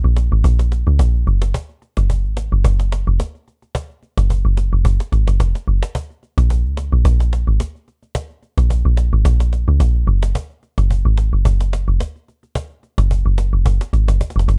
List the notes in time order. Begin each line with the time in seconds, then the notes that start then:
0.04 A#1, cajon slap
0.16 cajon slap
0.32 G#1
0.44 A#1, cajon bass
0.59 cajon slap
0.72 cajon slap
0.87 C#2, cajon slap
0.99 A#1, cajon bass, cajon slap
1.14 cajon slap
1.27 F#1, cajon slap
1.42 cajon slap
1.54 cajon bass
1.69 cajon slap
1.82 cajon slap
1.97 F#1, cajon slap
2.10 cajon bass
2.25 G#1, cajon slap
2.37 cajon slap
2.52 F#1
2.64 F#1, cajon bass
2.80 cajon slap
2.92 cajon slap
3.07 F1, cajon slap
3.20 cajon bass, cajon slap
3.35 cajon slap
3.48 cajon slap
3.62 cajon slap
3.75 cajon bass
3.90 cajon slap
4.03 cajon slap
4.18 F#1, cajon slap
4.30 cajon bass
4.45 F#1, cajon slap
4.57 cajon slap
4.73 F1
4.85 F#1, cajon bass
5.00 cajon slap
5.12 G#1, cajon slap
5.28 F#1, cajon slap
5.40 F1, cajon bass, cajon slap
5.55 cajon slap
5.68 F#1, cajon slap
5.83 cajon slap
5.95 cajon bass
6.10 cajon slap
6.23 cajon slap
6.38 A#1, cajon slap
6.50 cajon bass
6.65 C#2, cajon slap
6.77 cajon slap
6.92 A#1
7.05 A#1, cajon bass
7.20 cajon slap
7.33 cajon slap
7.47 G#1, cajon slap
7.60 cajon bass, cajon slap
7.75 cajon slap
7.88 cajon slap
8.03 cajon slap
8.15 cajon bass
8.30 cajon slap
8.43 cajon slap
8.58 A#1, cajon slap
8.70 cajon bass
8.85 A#1
8.97 cajon slap
9.13 G#1
9.25 A#1, cajon bass
9.40 cajon slap
9.53 cajon slap
9.67 C#2, cajon slap
9.80 A#1, cajon bass, cajon slap
9.95 cajon slap
10.07 F#1, cajon slap
10.23 cajon slap
10.35 cajon bass
10.50 cajon slap
10.63 cajon slap
10.78 F#1, cajon slap
10.90 cajon bass
11.05 G#1, cajon slap
11.18 cajon slap
11.33 F#1
11.45 F#1, cajon bass
11.60 cajon slap
11.73 cajon slap
11.88 F1, cajon slap
12.00 cajon bass, cajon slap
12.16 cajon slap
12.28 cajon slap
12.43 cajon slap
12.55 cajon bass
12.70 cajon slap
12.83 cajon slap
12.98 F#1, cajon slap
13.11 cajon bass
13.26 F#1, cajon slap
13.38 cajon slap
13.53 F1
13.66 F#1, cajon bass
13.81 cajon slap
13.93 G#1, cajon slap
14.08 F#1, cajon slap
14.21 cajon bass, cajon slap
14.30 cajon slap
14.36 F1, cajon slap
14.39 cajon slap
14.48 F#1, cajon slap